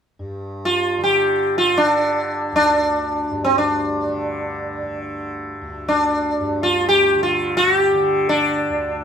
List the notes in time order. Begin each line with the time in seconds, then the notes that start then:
0.19 G2
0.65 F4
0.98 D3
1.04 G4
1.58 F4
1.74 D3 D4
2.52 D2 D4
3.30 G2
3.44 C4
3.58 D4
4.07 D3
4.83 D3
5.61 D2
5.88 D4
6.40 G2
6.63 F4
6.89 G4
7.15 D3
7.23 F4
7.57 F#4
7.76 G4
7.94 D3
8.29 D4
8.70 D2